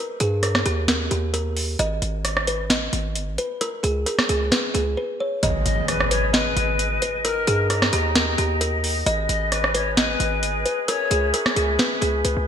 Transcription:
0.00 0.18 A#4 loud
0.20 0.64 G2 loud
0.20 0.41 G#4 medium
0.20 closed hi-hat medium
0.43 0.63 A#4 medium
0.43 cross-stick medium
0.43 closed hi-hat medium
0.55 cross-stick loud
0.55 snare medium
0.66 1.09 D#2 loud
0.66 0.86 G4 medium
0.66 closed hi-hat medium
0.88 1.09 A#4 medium
0.88 snare loud
0.88 closed hi-hat medium
1.11 1.77 D#2 loud
1.11 1.31 G4 medium
1.11 closed hi-hat medium
1.34 1.54 A#4 medium
1.34 closed hi-hat medium
1.57 open hi-hat medium
1.79 2.01 G#1 loud
1.79 2.44 D#5 loud
1.79 closed hi-hat medium
2.02 2.89 G#1 loud
2.02 closed hi-hat medium
2.25 cross-stick medium
2.25 closed hi-hat medium
2.37 cross-stick loud
2.47 2.68 B4 medium
2.47 closed hi-hat medium
2.70 3.34 D#5 medium
2.70 snare loud
2.70 closed hi-hat medium
2.93 3.17 G#1 loud
2.93 closed hi-hat medium
3.16 3.29 G1 loud
3.16 closed hi-hat medium
3.28 3.38 G#1 loud
3.38 3.59 B4 medium
3.38 closed hi-hat medium
3.61 3.82 A#4 loud
3.61 closed hi-hat medium
3.83 4.06 C#2 loud
3.83 4.04 G#4 medium
3.83 closed hi-hat medium
4.06 4.27 A#4 medium
4.06 closed hi-hat medium
4.19 cross-stick loud
4.19 snare medium
4.29 4.51 C#2 loud
4.29 4.50 G#4 medium
4.29 closed hi-hat medium
4.52 4.72 B4 medium
4.52 snare loud
4.52 closed hi-hat medium
4.74 4.96 C#2 loud
4.74 4.95 G#4 medium
4.74 closed hi-hat medium
4.97 5.18 B4 medium
5.20 5.41 C#5 medium
5.43 5.65 G#1 loud
5.43 7.23 G#4 medium
5.43 7.23 B4 medium
5.43 10.84 D#5 medium
5.43 6.07 D#5 loud
5.43 closed hi-hat medium
5.43 impact medium
5.66 6.53 G#1 loud
5.66 5.87 D#5 medium
5.66 closed hi-hat medium
5.88 6.10 B4 medium
5.88 cross-stick medium
5.88 closed hi-hat medium
6.00 cross-stick loud
6.11 6.32 B4 medium
6.11 6.33 C#5 medium
6.11 closed hi-hat medium
6.33 7.21 B4 loud
6.33 6.98 D#5 medium
6.33 snare loud
6.33 closed hi-hat medium
6.57 7.00 G#1 loud
6.57 closed hi-hat medium
6.79 closed hi-hat medium
7.02 7.22 B4 medium
7.02 closed hi-hat medium
7.24 9.05 D#4 medium
7.24 7.45 A#4 loud
7.24 7.67 A#4 loud
7.24 9.05 G5 medium
7.24 9.05 A#5 medium
7.24 closed hi-hat medium
7.47 7.91 G2 loud
7.47 7.68 G#4 medium
7.47 closed hi-hat medium
7.70 7.91 A#4 medium
7.70 cross-stick medium
7.70 closed hi-hat medium
7.82 cross-stick loud
7.82 snare medium
7.93 8.36 D#2 loud
7.93 8.13 G4 medium
7.93 closed hi-hat medium
8.15 8.36 A#4 medium
8.15 snare loud
8.15 closed hi-hat medium
8.38 9.04 D#2 loud
8.38 8.59 G4 medium
8.38 closed hi-hat medium
8.61 8.81 A#4 medium
8.61 closed hi-hat medium
8.84 open hi-hat medium
9.06 9.28 G#1 loud
9.06 12.47 G#4 medium
9.06 10.86 B4 medium
9.06 9.71 D#5 loud
9.06 closed hi-hat medium
9.29 10.16 G#1 loud
9.29 9.51 D#5 medium
9.29 closed hi-hat medium
9.52 9.73 B4 medium
9.52 cross-stick medium
9.52 closed hi-hat loud
9.64 cross-stick loud
9.74 9.95 B4 medium
9.74 9.96 C#5 medium
9.74 closed hi-hat medium
9.97 10.84 B4 loud
9.97 10.61 D#5 medium
9.97 snare loud
9.97 closed hi-hat medium
10.20 10.44 G#1 loud
10.20 closed hi-hat medium
10.43 10.56 G1 loud
10.43 closed hi-hat medium
10.55 10.65 G#1 loud
10.66 10.86 B4 medium
10.66 closed hi-hat medium
10.88 12.47 C#4 medium
10.88 11.09 A#4 loud
10.88 12.47 B4 medium
10.88 11.31 C#5 loud
10.88 12.47 E5 medium
10.88 closed hi-hat medium
11.11 11.33 C#2 loud
11.11 11.31 G#4 medium
11.11 closed hi-hat medium
11.34 11.54 A#4 medium
11.34 closed hi-hat medium
11.46 cross-stick loud
11.46 snare medium
11.56 11.78 C#2 loud
11.56 11.77 G#4 medium
11.56 closed hi-hat medium
11.79 12.00 B4 loud
11.79 snare loud
11.79 closed hi-hat medium
12.01 12.24 C#2 loud
12.01 12.22 G#4 medium
12.01 closed hi-hat medium
12.25 12.36 C#2 loud
12.25 12.45 B4 medium
12.25 closed hi-hat medium
12.37 12.47 C#2 loud

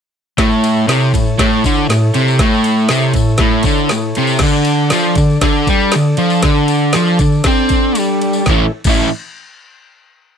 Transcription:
0.38 0.87 A2 loud
0.38 4.38 E4 medium
0.38 4.39 C#5 medium
0.38 kick loud
0.38 snare loud
0.38 ride loud
0.42 4.39 A4 medium
0.51 tambourine soft
0.64 ride medium
0.64 tambourine medium
0.77 tambourine soft
0.88 1.12 C3 loud
0.88 snare loud
0.88 ride loud
0.88 tambourine medium
1.02 tambourine soft
1.14 1.34 A2 medium
1.14 kick medium
1.14 ride medium
1.14 tambourine medium
1.26 tambourine soft
1.39 1.63 A2 loud
1.39 kick loud
1.39 snare loud
1.39 ride loud
1.64 1.89 D3 loud
1.64 kick medium
1.64 ride medium
1.64 tambourine medium
1.77 tambourine soft
1.89 2.09 A2 medium
1.89 snare loud
1.89 ride loud
1.89 tambourine medium
2.14 2.39 C3 loud
2.14 ride medium
2.14 tambourine soft
2.28 tambourine medium
2.39 2.90 A2 loud
2.39 kick loud
2.39 snare loud
2.39 ride loud
2.54 tambourine soft
2.64 ride medium
2.64 tambourine medium
2.79 tambourine soft
2.89 3.14 C3 loud
2.89 snare loud
2.89 ride loud
2.89 tambourine loud
3.14 3.35 A2 medium
3.14 kick medium
3.14 ride medium
3.14 tambourine medium
3.29 tambourine soft
3.38 3.65 A2 loud
3.38 kick loud
3.38 snare loud
3.38 ride medium
3.63 3.90 D3 medium
3.63 kick medium
3.63 ride medium
3.63 tambourine medium
3.78 tambourine soft
3.89 4.11 A2 medium
3.89 snare loud
3.89 ride medium
3.89 tambourine loud
4.15 4.41 C3 loud
4.15 ride medium
4.15 tambourine soft
4.27 tambourine medium
4.39 4.91 D3 loud
4.39 8.43 D4 medium
4.39 8.44 A4 medium
4.39 kick loud
4.39 snare loud
4.39 crash loud
4.43 8.44 D5 medium
4.52 tambourine soft
4.64 ride medium
4.64 tambourine medium
4.80 tambourine soft
4.90 5.16 F3 loud
4.90 snare loud
4.90 ride loud
4.90 tambourine loud
5.04 tambourine soft
5.15 5.38 D3 medium
5.15 kick medium
5.15 ride medium
5.15 tambourine medium
5.30 tambourine soft
5.41 5.67 D3 loud
5.41 kick loud
5.41 snare loud
5.41 ride loud
5.67 5.93 G3 loud
5.67 kick medium
5.67 ride medium
5.67 tambourine medium
5.80 tambourine soft
5.92 6.15 D3 medium
5.92 snare loud
5.92 ride loud
5.92 tambourine medium
6.17 6.43 F3 loud
6.17 ride medium
6.17 tambourine soft
6.30 tambourine medium
6.42 6.94 D3 loud
6.42 kick loud
6.42 snare loud
6.42 ride loud
6.68 ride medium
6.68 tambourine medium
6.81 tambourine soft
6.93 7.20 F3 loud
6.93 snare loud
6.93 ride loud
6.93 tambourine loud
7.08 tambourine soft
7.19 7.41 D3 medium
7.19 kick medium
7.19 ride medium
7.19 tambourine medium
7.32 tambourine soft
7.44 7.98 C4 loud
7.44 kick loud
7.44 snare loud
7.44 ride loud
7.44 tambourine soft
7.69 kick medium
7.69 ride medium
7.69 tambourine medium
7.95 8.47 G3 loud
7.95 ride medium
7.95 tambourine loud
8.21 ride medium
8.21 tambourine soft
8.33 tambourine medium
8.46 8.64 A2 medium
8.46 8.64 E3 loud
8.46 8.72 E4 medium
8.46 8.72 A4 medium
8.46 8.72 C#5 medium
8.46 kick loud
8.46 snare medium
8.46 tambourine medium
8.50 8.64 A3 medium
8.50 8.64 C#4 loud
8.50 8.64 E4 medium
8.84 9.06 A2 loud
8.84 9.07 E3 loud
8.84 9.07 A3 medium
8.84 kick loud
8.84 crash loud
8.84 tambourine medium
8.89 9.08 C#4 loud
8.89 9.08 E4 loud

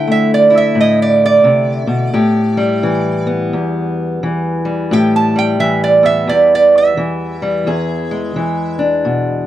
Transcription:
0.00 2.14 D3 medium
0.00 0.50 E4 medium
0.07 2.17 A3 medium
0.12 0.32 E5 medium
0.34 0.55 D5 medium
0.50 2.14 E4 medium
0.58 0.78 E5 medium
0.75 1.44 A2 medium
0.81 1.01 D#5 medium
1.02 1.23 D5 medium
1.26 3.27 D5 medium
1.44 1.87 C3 medium
1.87 2.13 B2 medium
2.13 3.52 A2 medium
2.13 4.87 G4 medium
2.57 4.64 G3 medium
2.83 4.23 E3 medium
3.27 6.03 B3 medium
3.53 4.91 E2 medium
4.23 5.59 E3 medium
4.65 5.34 G3 medium
4.91 6.29 A2 medium
4.91 7.65 G4 medium
4.91 5.14 G5 medium
5.16 5.37 A5 medium
5.36 7.41 G3 medium
5.36 5.60 G5 medium
5.60 6.97 E3 medium
5.60 5.82 E5 medium
5.84 6.06 D5 medium
6.03 8.78 B3 medium
6.03 6.28 E5 medium
6.27 7.66 E2 medium
6.27 6.51 D5 medium
6.55 6.76 D5 medium
6.78 8.80 E5 medium
6.97 8.35 E3 medium
7.42 7.68 G3 medium
7.67 9.47 E2 medium
7.67 9.47 G#4 medium
8.11 9.47 G#3 medium
8.36 9.47 E3 medium
8.79 9.47 D4 medium
9.05 9.47 B2 medium

